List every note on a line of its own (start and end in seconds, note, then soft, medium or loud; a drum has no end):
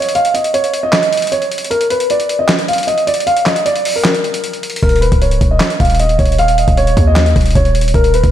0.00 0.11 C#5 medium
0.00 closed hi-hat medium
0.09 closed hi-hat medium
0.15 0.30 F5 loud
0.15 closed hi-hat medium
0.25 closed hi-hat medium
0.34 0.49 D#5 medium
0.34 closed hi-hat medium
0.44 closed hi-hat medium
0.54 0.81 C#5 medium
0.54 closed hi-hat medium
0.64 closed hi-hat medium
0.74 closed hi-hat medium
0.83 1.29 D#5 medium
0.92 snare loud
0.92 clap medium
0.92 closed hi-hat medium
1.03 closed hi-hat medium
1.13 closed hi-hat medium
1.17 closed hi-hat medium
1.22 closed hi-hat medium
1.27 closed hi-hat medium
1.32 1.69 C#5 medium
1.32 closed hi-hat medium
1.42 closed hi-hat soft
1.52 closed hi-hat medium
1.58 closed hi-hat medium
1.64 closed hi-hat medium
1.71 1.86 A#4 medium
1.71 closed hi-hat medium
1.81 closed hi-hat medium
1.90 2.05 B4 medium
1.90 closed hi-hat medium
2.00 closed hi-hat medium
2.10 2.38 D5 medium
2.10 closed hi-hat medium
2.20 closed hi-hat medium
2.29 closed hi-hat medium
2.39 2.47 D#5 medium
2.48 snare loud
2.48 clap medium
2.48 closed hi-hat medium
2.59 closed hi-hat medium
2.68 2.83 F5 medium
2.68 closed hi-hat medium
2.73 closed hi-hat medium
2.78 closed hi-hat medium
2.83 closed hi-hat medium
2.87 3.03 D#5 medium
2.87 closed hi-hat medium
2.98 closed hi-hat soft
3.07 3.22 D5 medium
3.07 closed hi-hat medium
3.14 closed hi-hat medium
3.20 closed hi-hat medium
3.27 3.42 F5 loud
3.27 closed hi-hat medium
3.37 closed hi-hat medium
3.46 3.61 D#5 medium
3.46 snare medium
3.46 clap medium
3.46 closed hi-hat medium
3.56 closed hi-hat medium
3.66 3.93 D5 medium
3.66 closed hi-hat medium
3.76 closed hi-hat medium
3.85 open hi-hat medium
3.96 4.79 A#4 medium
4.04 snare loud
4.04 clap medium
4.04 closed hi-hat medium
4.15 closed hi-hat medium
4.24 closed hi-hat soft
4.34 closed hi-hat medium
4.44 closed hi-hat medium
4.53 closed hi-hat soft
4.63 closed hi-hat medium
4.70 closed hi-hat medium
4.76 closed hi-hat medium
4.83 5.11 D#1 loud
4.83 4.98 A#4 loud
4.83 kick loud
4.83 closed hi-hat medium
4.89 closed hi-hat medium
4.96 closed hi-hat medium
5.01 5.17 B4 medium
5.01 closed hi-hat medium
5.12 5.40 C#1 loud
5.12 kick medium
5.12 closed hi-hat medium
5.22 5.49 C#5 medium
5.22 closed hi-hat medium
5.31 closed hi-hat medium
5.41 5.60 D#1 loud
5.41 kick medium
5.41 closed hi-hat medium
5.51 5.58 D#5 medium
5.60 snare loud
5.60 clap medium
5.60 closed hi-hat medium
5.70 closed hi-hat medium
5.80 6.17 D#1 loud
5.80 5.95 F5 medium
5.80 kick medium
5.80 closed hi-hat medium
5.85 closed hi-hat medium
5.90 closed hi-hat medium
5.95 closed hi-hat medium
5.99 6.15 D#5 medium
5.99 closed hi-hat medium
6.09 closed hi-hat soft
6.19 6.66 D#1 loud
6.19 6.34 C#5 medium
6.19 kick medium
6.19 closed hi-hat medium
6.25 closed hi-hat medium
6.32 closed hi-hat medium
6.38 6.54 F5 loud
6.38 closed hi-hat medium
6.48 closed hi-hat medium
6.58 6.74 D#5 medium
6.58 closed hi-hat medium
6.68 6.96 D#1 loud
6.68 kick medium
6.68 closed hi-hat medium
6.77 7.05 C#5 loud
6.77 closed hi-hat medium
6.87 closed hi-hat medium
6.97 7.34 D#2 loud
6.97 kick medium
6.97 closed hi-hat medium
7.07 7.53 D#5 medium
7.16 snare loud
7.16 clap medium
7.16 closed hi-hat medium
7.26 closed hi-hat medium
7.36 7.55 D#1 loud
7.36 kick medium
7.36 closed hi-hat medium
7.41 closed hi-hat medium
7.46 closed hi-hat medium
7.51 closed hi-hat medium
7.55 7.93 D#1 loud
7.55 7.92 C#5 medium
7.55 kick medium
7.55 closed hi-hat medium
7.65 closed hi-hat soft
7.75 closed hi-hat medium
7.81 closed hi-hat medium
7.88 closed hi-hat medium
7.94 8.22 D#1 loud
7.94 8.10 A#4 medium
7.94 kick loud
7.94 closed hi-hat medium
8.04 closed hi-hat medium
8.14 8.29 B4 medium
8.14 closed hi-hat medium
8.24 8.31 D#1 loud
8.24 kick medium
8.24 closed hi-hat medium